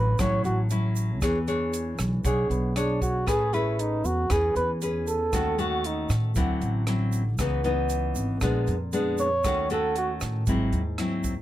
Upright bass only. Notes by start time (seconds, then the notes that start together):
Already playing: A1
0.19 A1
0.44 A1
1.22 E2
1.99 B1
2.24 B1
2.50 B1
3.27 A1
4.04 E2
4.30 E2
4.55 E2
5.33 D#2
6.09 A2
6.36 D2
6.61 A1
7.39 C#2
8.16 G#1
8.42 A#1
8.68 F2
9.45 D#2
10.22 A2
10.47 G#1
10.72 D#2